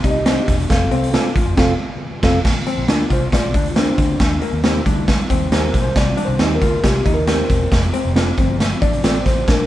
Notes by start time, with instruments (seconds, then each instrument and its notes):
0.04 fingered electric bass C2, tine electric piano C4 G4 D5, hollow-body jazz guitar D#4, kick, closed hi-hat
0.10 tine electric piano D#5
0.26 clean electric guitar C4 D#4 G4 C5, hollow-body jazz guitar D4, snare, closed hi-hat
0.48 fingered electric bass E1, kick, snare, closed hi-hat
0.60 closed hi-hat
0.69 fingered electric bass F1, tine electric piano C4 A4 F5, kick, snare, closed hi-hat
0.91 fingered electric bass C2, hollow-body jazz guitar C4, closed hi-hat
1.04 closed hi-hat
1.13 clean electric guitar C4 F4 A4 C5, hollow-body jazz guitar D4, snare, closed hi-hat
1.36 fingered electric bass A1, hollow-body jazz guitar F4, kick, closed hi-hat
1.46 fingered electric bass F1
1.57 fingered electric bass F1, tine electric piano C4 A4 F5, clean electric guitar C4 F4 A4 C5, kick, snare, crash
2.22 fingered electric bass F1, clean electric guitar C4 F4 A4 C5, tine electric piano C4 A4 F5, kick, snare, crash
2.44 fingered electric bass A#1, tine electric piano D3 F3 A#3, kick, snare, crash
2.66 hollow-body jazz guitar C4, closed hi-hat
2.78 fingered electric bass A#1
2.88 fingered electric bass D2, clean electric guitar A#3 D4 F4 A#4, hollow-body jazz guitar D4, snare, closed hi-hat
3.10 fingered electric bass C2, hollow-body jazz guitar F4, tine electric piano C5, kick, closed hi-hat
3.32 fingered electric bass A#1, hollow-body jazz guitar F4, tine electric piano D5, kick, snare, closed hi-hat
3.54 fingered electric bass D2, hollow-body jazz guitar D4, kick, closed hi-hat
3.65 closed hi-hat
3.70 tine electric piano F4
3.76 clean electric guitar A#3 D4 F4 A#4, hollow-body jazz guitar C4, tine electric piano D4, snare, closed hi-hat
3.98 fingered electric bass D2, kick, closed hi-hat
4.19 fingered electric bass D#2, kick, snare, closed hi-hat
4.42 hollow-body jazz guitar A#3, closed hi-hat
4.53 fingered electric bass D#2
4.64 clean electric guitar A#3 D#4 G4 A#4, hollow-body jazz guitar C4, snare, closed hi-hat
4.86 fingered electric bass D2, tine electric piano G3 A#3 D#4, hollow-body jazz guitar D4, kick, closed hi-hat
5.08 kick, snare, closed hi-hat
5.30 fingered electric bass D#2, hollow-body jazz guitar C4, kick, closed hi-hat
5.51 fingered electric bass D#2, clean electric guitar A#3 D#4 G4 A#4, hollow-body jazz guitar A#3, tine electric piano C5, snare, closed hi-hat
5.74 fingered electric bass B1, kick, snare, closed hi-hat
5.82 tine electric piano C5
5.95 fingered electric bass C2, tine electric piano D#3 G3 C4 D5, kick, snare, closed hi-hat
6.17 hollow-body jazz guitar D4, closed hi-hat
6.25 fingered electric bass C2, tine electric piano C5
6.39 fingered electric bass D#2, clean electric guitar C4 D#4 G4 C5, hollow-body jazz guitar D#4, snare, closed hi-hat
6.55 tine electric piano A#4
6.62 fingered electric bass D2, hollow-body jazz guitar F4, kick, closed hi-hat
6.83 fingered electric bass C2, hollow-body jazz guitar F4, tine electric piano G4, kick, snare, closed hi-hat
7.06 fingered electric bass D#2, hollow-body jazz guitar D#4, kick, closed hi-hat
7.14 tine electric piano A#4
7.27 hollow-body jazz guitar C4, clean electric guitar C4 D#4 G4 C5, snare, closed hi-hat
7.50 fingered electric bass E1, kick, closed hi-hat
7.71 fingered electric bass F1, kick, snare, closed hi-hat
7.83 closed hi-hat
7.94 hollow-body jazz guitar C4, closed hi-hat
8.05 fingered electric bass F1
8.15 clean electric guitar C4 F4 A4 C5, hollow-body jazz guitar D4, snare, closed hi-hat
8.38 fingered electric bass G1, tine electric piano F3 A3 C4, hollow-body jazz guitar C4, kick, closed hi-hat
8.60 snare, closed hi-hat
8.82 fingered electric bass A1, hollow-body jazz guitar D4, tine electric piano D5, kick, closed hi-hat
8.93 closed hi-hat
9.04 fingered electric bass A1, clean electric guitar C4 F4 A4 C5, hollow-body jazz guitar C4, snare, closed hi-hat
9.26 fingered electric bass A1, tine electric piano C5, kick, snare, closed hi-hat
9.47 fingered electric bass A#1, tine electric piano F3 A#3 D4 A#4, kick, snare, closed hi-hat